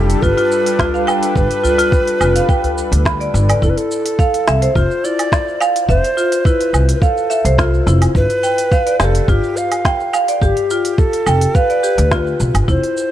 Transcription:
Already playing: upright bass F1, analog synth pad G3 D4 G4 A4, native american-style wooden flute G4, marimba G5
0.10 open hi-hat, shaker
0.22 upright bass G1, marimba F4, native american-style wooden flute B4, kick, shaker
0.37 marimba F4, open hi-hat, shaker
0.52 shaker
0.66 open hi-hat, shaker
0.79 marimba F4, kick, snare, udu, shaker
0.89 analog synth pad B4
0.94 marimba F5, shaker
1.07 marimba G5, low woodblock, shaker
1.23 open hi-hat, shaker
1.35 upright bass G1, native american-style wooden flute B4, kick, shaker
1.51 open hi-hat, shaker
1.63 marimba F4, udu, shaker
1.78 marimba F4, open hi-hat, shaker
1.92 kick, shaker
2.08 open hi-hat, shaker
2.21 upright bass F1, marimba F4, low woodblock, shaker
2.36 marimba F5, open hi-hat, shaker
2.49 marimba G5, kick, shaker
2.64 open hi-hat, udu, shaker
2.78 shaker
2.92 upright bass D2, open hi-hat, udu, shaker
3.05 marimba B5, kick, snare, shaker
3.20 marimba D5, open hi-hat, shaker
3.34 upright bass G1, shaker
3.49 marimba D5, open hi-hat, low woodblock, shaker
3.62 upright bass F1, marimba E4, native american-style wooden flute A4, kick, shaker
3.70 native american-style wooden flute B4
3.77 native american-style wooden flute A4, open hi-hat, shaker
3.91 shaker
4.06 open hi-hat, shaker
4.19 marimba F5, kick, shaker
4.34 open hi-hat, shaker
4.47 upright bass C2, marimba E5, snare, low woodblock, shaker
4.62 marimba C5, open hi-hat, shaker
4.75 upright bass F1, marimba F4, native american-style wooden flute C5, kick, shaker
4.91 shaker
5.04 marimba E4, native american-style wooden flute D5, shaker
5.19 open hi-hat, low woodblock, shaker
5.32 kick, snare, shaker
5.48 shaker
5.61 marimba F5, low woodblock, shaker
5.76 open hi-hat, shaker
5.89 upright bass F1, native american-style wooden flute C5, marimba E5, kick, shaker
6.04 marimba C5, open hi-hat, shaker
6.17 marimba F4, shaker
6.32 open hi-hat, shaker
6.45 marimba E4, native american-style wooden flute B4, kick, shaker
6.61 open hi-hat, shaker
6.73 upright bass C2, low woodblock, shaker
6.89 open hi-hat, shaker
6.95 native american-style wooden flute B4
7.01 native american-style wooden flute A4, marimba F5, kick, shaker
7.17 shaker
7.30 marimba E5, shaker
7.45 upright bass C2, marimba C5, open hi-hat, shaker
7.58 marimba F4, kick, snare, shaker
7.74 shaker
7.87 upright bass F1, marimba E4, shaker
8.02 open hi-hat, low woodblock, shaker
8.15 upright bass G1, native american-style wooden flute B4, kick, shaker
8.30 open hi-hat, shaker
8.43 marimba G5, shaker
8.58 open hi-hat, shaker
8.72 marimba F5, kick, shaker
8.87 marimba D5, open hi-hat, shaker
9.00 upright bass F1, marimba G4, native american-style wooden flute B4, snare, low woodblock, shaker
9.05 native american-style wooden flute A4
9.15 open hi-hat, shaker
9.28 upright bass G1, marimba F4, native american-style wooden flute G4, kick, shaker
9.44 shaker
9.57 native american-style wooden flute F5, shaker
9.72 open hi-hat, low woodblock, shaker
9.85 marimba G5, kick, snare, shaker
10.00 shaker
10.13 marimba F5, low woodblock, shaker
10.28 marimba D5, open hi-hat, shaker
10.42 upright bass G1, marimba G4, native american-style wooden flute G4 A4, kick, shaker
10.57 open hi-hat, shaker
10.70 marimba F4, shaker
10.85 open hi-hat, shaker
10.98 native american-style wooden flute A4, kick, shaker
11.13 open hi-hat, shaker
11.26 upright bass F1, marimba G5, low woodblock, shaker
11.41 open hi-hat, shaker
11.55 native american-style wooden flute B4, marimba F5, kick, shaker
11.70 marimba D5, open hi-hat, shaker
11.83 marimba G4, shaker
11.98 upright bass D2, open hi-hat, shaker
12.11 marimba F4, kick, snare, shaker
12.27 shaker
12.40 upright bass B1, shaker
12.54 upright bass G1, open hi-hat, low woodblock, shaker
12.68 upright bass F1, marimba E4, native american-style wooden flute C5, kick, shaker
12.83 open hi-hat, shaker
12.97 shaker

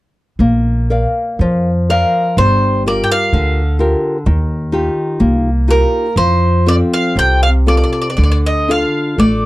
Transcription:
0.39 upright bass A#1, nylon-string guitar A#3
0.90 nylon-string guitar A#4 D5 F5
1.39 upright bass F2, nylon-string guitar F3
1.90 nylon-string guitar A#4 D5 F5, mandolin A#4
2.37 upright bass G1, nylon-string guitar G3, mandolin C5
2.86 nylon-string guitar F4 G4 A#4, mandolin D5
3.04 mandolin G5
3.12 mandolin F5
3.33 upright bass D2, nylon-string guitar D3
3.79 nylon-string guitar F4 G4 A#4
4.26 upright bass D#2, nylon-string guitar D#3
4.72 nylon-string guitar D#4 F4 G4
5.20 upright bass C2, nylon-string guitar A#3
5.68 nylon-string guitar D#4 F4 G4, mandolin A#4
6.16 upright bass F2, nylon-string guitar F3, mandolin C5
6.66 nylon-string guitar C4 F4 A4, mandolin D5
6.94 mandolin F5
7.16 upright bass C2, nylon-string guitar C3, mandolin G5
7.43 mandolin F5
7.66 nylon-string guitar C4 F4 A4, mandolin D5
7.77 mandolin D5
7.84 mandolin D5
7.93 mandolin D5
8.02 mandolin D5
8.10 mandolin D5
8.17 upright bass D2, nylon-string guitar D3, mandolin D5
8.23 mandolin D5
8.32 mandolin D5
8.46 mandolin D#5
8.68 nylon-string guitar D4 F4 A4, mandolin F5
9.18 upright bass A1, nylon-string guitar A3, mandolin D5

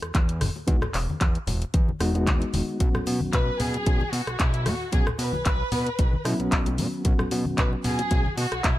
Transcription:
0.02 analog synth bass E2, cross-stick, closed hi-hat, cabasa
0.15 analog synth bass E2, kick, clap, closed hi-hat, high bongo, cabasa
0.29 closed hi-hat, cabasa
0.41 analog synth bass E1, cross-stick, open hi-hat, high conga, low conga, cabasa
0.55 high bongo, cabasa
0.67 analog synth bass E2, reed electric piano G#3 B3 D#4 F#4, kick, closed hi-hat, cabasa
0.81 cross-stick, high bongo, low conga, cabasa
0.94 analog synth bass E1, clap, open hi-hat, cabasa
1.08 analog synth bass E2, high conga, cabasa
1.21 analog synth bass E2, kick, clap, closed hi-hat, high bongo, cabasa
1.35 closed hi-hat
1.47 analog synth bass E1, open hi-hat, high bongo, low conga, cabasa
1.62 closed hi-hat, cabasa
1.74 analog synth bass E2, kick, closed hi-hat, cabasa
1.89 high bongo, high conga
2.00 analog synth bass E1, reed electric piano G#3 B3 D#4 F#4, cross-stick, open hi-hat, cabasa
2.14 reed electric piano G#3 B3 D#4 F#4, closed hi-hat, high bongo, cabasa
2.27 analog synth bass E2, kick, clap, closed hi-hat, cabasa
2.40 closed hi-hat, cabasa
2.54 analog synth bass E1, open hi-hat, high bongo, high conga, cabasa
2.68 cabasa
2.79 analog synth bass B1, reed electric piano F#3 B3 C#4 F#4, kick, closed hi-hat, cabasa
2.94 cross-stick, low conga, cabasa
3.06 analog synth bass B2, open hi-hat, high bongo, cabasa
3.20 analog synth bass B1, high conga, cabasa
3.33 analog synth bass B1, violin section B4, kick, clap, closed hi-hat, high bongo, cabasa
3.60 analog synth bass B2, violin section G#4, open hi-hat, low conga, cabasa
3.74 closed hi-hat, high bongo, cabasa
3.86 analog synth bass B1, reed electric piano F#3 B3 C#4 F#4, kick, closed hi-hat, cabasa
4.00 high bongo, high conga
4.13 analog synth bass B2, violin section F#4, open hi-hat, cabasa
4.27 analog synth bass B1, cross-stick, closed hi-hat, cabasa
4.39 analog synth bass B1, violin section E4, kick, clap, closed hi-hat, high bongo, cabasa
4.54 closed hi-hat, cabasa
4.66 analog synth bass B2, violin section F#4, cross-stick, open hi-hat, high bongo, high conga, low conga, cabasa
4.81 cabasa
4.92 analog synth bass B1, reed electric piano F#3 B3 C#4 F#4, violin section G#4, kick, closed hi-hat, cabasa
5.07 cross-stick, high bongo, low conga, cabasa
5.19 analog synth bass B2, violin section B4, open hi-hat, cabasa
5.33 analog synth bass B1, high bongo, high conga, cabasa
5.45 analog synth bass B1, kick, clap, closed hi-hat, cabasa
5.72 analog synth bass B2, open hi-hat, high bongo, low conga, cabasa
5.87 closed hi-hat, cabasa
5.99 analog synth bass B1, kick, closed hi-hat, high bongo, cabasa
6.13 high conga
6.25 analog synth bass B2, reed electric piano F#3 B3 C#4 E4, cross-stick, open hi-hat, cabasa
6.39 analog synth bass B1, reed electric piano F#3 B3 C#4 F#4, closed hi-hat, high bongo, cabasa
6.52 analog synth bass B1, kick, clap, closed hi-hat, cabasa
6.66 closed hi-hat, high bongo, cabasa
6.78 analog synth bass B2, open hi-hat, high conga, cabasa
6.93 cabasa
7.04 analog synth bass B1, reed electric piano F#3 B3 C#4 F#4, kick, closed hi-hat, high bongo, cabasa
7.19 cross-stick, low conga, cabasa
7.31 analog synth bass B2, open hi-hat, high bongo, cabasa
7.45 analog synth bass B1, high conga, cabasa
7.58 analog synth bass B1, violin section B4, kick, clap, closed hi-hat, cabasa
7.73 high bongo
7.84 analog synth bass B2, violin section G#4, open hi-hat, low conga, cabasa
7.99 closed hi-hat, high bongo, cabasa
8.11 analog synth bass B1, reed electric piano F#3 B3 C#4 F#4, kick, closed hi-hat, cabasa
8.26 high conga
8.37 analog synth bass B2, violin section F#4, open hi-hat, high bongo, cabasa
8.52 analog synth bass B1, cross-stick, closed hi-hat, cabasa
8.64 analog synth bass B1, violin section E4, kick, clap, closed hi-hat, high bongo, cabasa

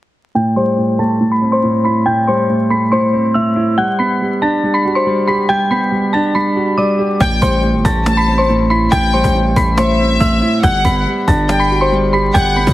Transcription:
0.35 grand piano A2, synth bell G5 G6
0.56 grand piano G3, synth bell C5 C6
0.78 grand piano A2
0.99 grand piano A3, synth bell A5 A6
1.20 grand piano A2
1.32 synth bell B5 B6
1.41 grand piano C4
1.52 synth bell C5 C6
1.63 grand piano A2
1.84 grand piano E4, synth bell B5 B6
2.06 grand piano A2, synth bell G5 G6
2.27 grand piano G3, synth bell C5 C6
2.49 grand piano A2
2.70 grand piano A3, synth bell B5 B6
2.92 grand piano A2, synth bell C5 C6
3.13 grand piano C4
3.34 grand piano A2, synth bell E5 E6
3.56 grand piano E4
3.78 grand piano G3, synth bell F#5 F#6
3.99 grand piano B3, synth bell B5 B6
4.21 grand piano G3
4.42 grand piano D4, synth bell A5 A6
4.63 grand piano G3
4.74 synth bell B5 B6
4.85 grand piano F#4
4.95 synth bell C5 C6
5.06 grand piano G3
5.28 grand piano G4, synth bell B5 B6
5.49 grand piano G3, synth bell G5 G6
5.70 grand piano B3, synth bell B5 B6
5.91 grand piano G3
6.13 grand piano D4, synth bell A5 A6
6.35 grand piano G3, synth bell B5 B6
6.56 grand piano F#4
6.78 grand piano G3, synth bell D5 D6
6.99 grand piano G4
7.20 808-style bass A1, grand piano A2, synth bell G5 G6, violin section G5, cajon bass
7.42 808-style bass A1, grand piano G3, synth bell C5 C6, cajon bass
7.63 grand piano A2, cajon slap
7.74 808-style bass G1
7.85 808-style bass A1, grand piano A3, synth bell A5 A6, cajon bass
8.06 grand piano A2, violin section A5, cajon slap
8.17 synth bell B5 B6
8.27 grand piano C4, cajon slap
8.38 synth bell C5 C6
8.49 grand piano A2, cajon slap
8.70 grand piano E4, synth bell B5 B6
8.92 808-style bass A1, grand piano A2, synth bell G5 G6, violin section G5, cajon bass
9.13 grand piano G3, synth bell C5 C6, cajon slap
9.24 808-style bass A1, cajon bass
9.35 grand piano A2
9.56 808-style bass A1, grand piano A3, synth bell B5 B6, cajon bass
9.77 grand piano A2, synth bell C5 C6, violin section E5, cajon slap
9.99 grand piano C4
10.20 808-style bass A1, grand piano A2, synth bell E5 E6, cajon bass
10.42 grand piano E4, cajon slap
10.63 808-style bass G1, grand piano G3, violin section F#5, synth bell F#5 F#6, cajon bass
10.85 808-style bass G1, grand piano B3, synth bell B5 B6, cajon bass
11.06 grand piano G3, cajon slap
11.27 808-style bass G1, grand piano D4, synth bell A5 A6, cajon bass
11.49 grand piano G3, violin section G5, cajon slap
11.60 synth bell B5 B6
11.71 grand piano F#4, cajon slap
11.81 synth bell C5 C6
11.92 grand piano G3, cajon slap
12.13 grand piano G4, synth bell B5 B6
12.34 808-style bass G1, grand piano G3, violin section F#5, synth bell G5 G6, cajon bass
12.56 grand piano B3, synth bell B5 B6, cajon slap
12.63 808-style bass G2, cajon bass, cajon slap

